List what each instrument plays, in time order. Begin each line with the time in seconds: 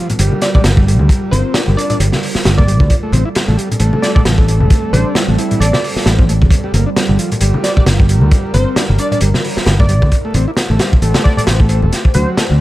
Already playing: ambient pad G3 F4 A#4
0.10 closed hi-hat, low conga
0.19 fingered electric bass G1, transistor combo organ G3, closed hi-hat
0.32 high conga
0.41 digital synth lead D5, snare, closed hi-hat
0.55 digital synth lead D5, muted fingered electric bass stroke, kick, low conga
0.64 fingered electric bass G1, snare, closed hi-hat, high conga
0.77 transistor combo organ G3, kick
0.87 transistor combo organ G3, closed hi-hat
0.99 fingered electric bass D2, transistor combo organ G3, high conga
1.09 kick, closed hi-hat
1.31 fingered electric bass G1, transistor combo organ C4, digital synth lead C5, closed hi-hat, high conga
1.54 transistor combo organ D4, snare, closed hi-hat
1.67 fingered electric bass G1, transistor combo organ G3, high conga
1.77 transistor combo organ D4, digital synth lead D5, closed hi-hat
1.90 digital synth lead D5, closed hi-hat, low conga
2.00 fingered electric bass G1, transistor combo organ G3, closed hi-hat
2.13 snare, high conga
2.23 open hi-hat
2.35 muted fingered electric bass stroke, snare
2.45 fingered electric bass G1, transistor combo organ G3, snare, closed hi-hat, high conga
2.57 transistor combo organ A#3, digital synth lead D5, kick, low conga
2.67 transistor combo organ G3, closed hi-hat
2.80 fingered electric bass D2, kick, high conga
2.90 ambient pad C4 A4, kick, closed hi-hat
3.03 transistor combo organ A3
3.12 fingered electric bass A1, transistor combo organ C4, closed hi-hat, high conga
3.25 transistor combo organ E4
3.35 snare, closed hi-hat
3.48 fingered electric bass A1, transistor combo organ A3, high conga
3.57 transistor combo organ G3, closed hi-hat
3.71 closed hi-hat, low conga
3.80 fingered electric bass A1, transistor combo organ A3, closed hi-hat
3.93 high conga
4.02 digital synth lead D5, snare, closed hi-hat
4.15 digital synth lead D5, muted fingered electric bass stroke, kick, low conga
4.25 fingered electric bass A1, snare, closed hi-hat, high conga
4.38 transistor combo organ A3, kick
4.48 transistor combo organ A3, closed hi-hat
4.60 fingered electric bass E1, transistor combo organ A3, high conga
4.70 kick, closed hi-hat
4.93 fingered electric bass A1, transistor combo organ D4, digital synth lead C5, closed hi-hat, high conga
5.15 transistor combo organ E4, snare, closed hi-hat
5.28 fingered electric bass A1, transistor combo organ A3, high conga
5.38 transistor combo organ E4, closed hi-hat
5.51 closed hi-hat, low conga
5.60 fingered electric bass A1, transistor combo organ A3, digital synth lead D5, closed hi-hat
5.73 snare, high conga
5.84 open hi-hat
5.96 muted fingered electric bass stroke, snare
6.06 fingered electric bass A1, transistor combo organ A3, snare, closed hi-hat, high conga
6.19 transistor combo organ C4, kick, low conga
6.29 transistor combo organ A3, closed hi-hat
6.41 fingered electric bass E1, kick, high conga
6.50 ambient pad F4 A#4, kick, closed hi-hat
6.64 transistor combo organ G3
6.74 fingered electric bass G1, transistor combo organ A#3, closed hi-hat, high conga
6.86 transistor combo organ D4
6.96 snare, closed hi-hat
7.09 fingered electric bass G1, transistor combo organ G3, high conga
7.19 transistor combo organ F3, closed hi-hat
7.32 closed hi-hat, low conga
7.41 fingered electric bass G1, transistor combo organ G3, closed hi-hat
7.54 high conga
7.64 digital synth lead D5, snare, closed hi-hat
7.77 digital synth lead D5, muted fingered electric bass stroke, kick, low conga
7.86 fingered electric bass G1, snare, closed hi-hat, high conga
7.99 transistor combo organ G3, kick
8.09 transistor combo organ G3, closed hi-hat
8.21 fingered electric bass D2, transistor combo organ G3, high conga
8.31 ambient pad E4, kick, closed hi-hat
8.54 fingered electric bass G1, transistor combo organ C4, digital synth lead C5, closed hi-hat, high conga
8.76 transistor combo organ D4, snare, closed hi-hat
8.89 fingered electric bass G1, transistor combo organ G3, high conga
8.98 transistor combo organ D4, digital synth lead D5, closed hi-hat
9.11 digital synth lead D5, closed hi-hat, low conga
9.21 fingered electric bass G1, transistor combo organ G3, closed hi-hat
9.34 snare, high conga
9.44 open hi-hat
9.57 muted fingered electric bass stroke, snare
9.66 fingered electric bass G1, transistor combo organ G3, snare, closed hi-hat, high conga
9.80 transistor combo organ A#3, digital synth lead D5, kick, low conga
9.89 transistor combo organ G3, closed hi-hat
10.02 fingered electric bass D2, kick, high conga
10.12 ambient pad A3 G4 C5, kick, closed hi-hat
10.25 transistor combo organ A3
10.34 fingered electric bass A1, transistor combo organ C4, closed hi-hat, high conga
10.48 transistor combo organ E4
10.57 snare, closed hi-hat
10.70 fingered electric bass A1, transistor combo organ A3, high conga
10.79 transistor combo organ G3, snare, closed hi-hat
10.92 kick, low conga
11.02 fingered electric bass A1, transistor combo organ A3, closed hi-hat
11.14 snare, closed hi-hat, high conga
11.24 digital synth lead D5, kick
11.37 digital synth lead D5, muted fingered electric bass stroke, closed hi-hat, low conga
11.47 fingered electric bass A1, snare, closed hi-hat, high conga
11.60 transistor combo organ A3, kick
11.69 transistor combo organ A3, closed hi-hat
11.82 fingered electric bass E1, transistor combo organ A3, high conga
11.92 ambient pad C4 F#4 D5, snare, closed hi-hat
12.05 kick
12.14 fingered electric bass D2, transistor combo organ F#3, digital synth lead C5, closed hi-hat, high conga
12.37 transistor combo organ A3, snare, closed hi-hat
12.50 fingered electric bass D2, transistor combo organ D3, high conga